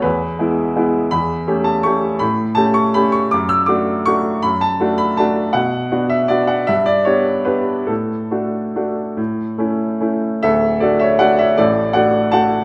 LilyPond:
\new Staff \with { instrumentName = "Grand piano" } { \time 3/4 \key e \mixolydian \tempo 4 = 158 << { b'4. r4. | \key d \major b''4. a''8 cis'''4 | b''4 a''8 cis'''8 b''8 cis'''8 | d'''8 e'''8 d'''4 cis'''4 |
b''8 a''4 b''8 a''4 | fis''4. e''8 d''8 fis''8 | e''8 d''8 cis''4 b'4 | a'2.~ |
a'2~ a'8 r8 | <a' e''>4 <a' d''>8 <cis'' e''>8 <d'' fis''>8 <cis'' e''>8 | <a' d''>4 <d'' fis''>4 <fis'' a''>4 | } \\ { e,4 <gis b e'>4 <gis b e'>4 | e,4 <a cis' g'>4 <a cis' g'>4 | a,4 <a cis' g'>4 <a cis' g'>4 | fis,4 <a d' fis'>4 <a d' fis'>4 |
fis,4 <a d' fis'>4 <a d' fis'>4 | b,4 <b d' fis'>4 <b d' fis'>4 | g,4 <b d' g'>4 <b d' g'>4 | a,4 <a d' fis'>4 <a d' fis'>4 |
a,4 <a cis' e'>4 <a cis' e'>4 | <d,, d,>4 <a d' fis'>4 <a d' fis'>4 | <a,, a,>4 <a d' fis'>4 <a d' fis'>4 | } >> }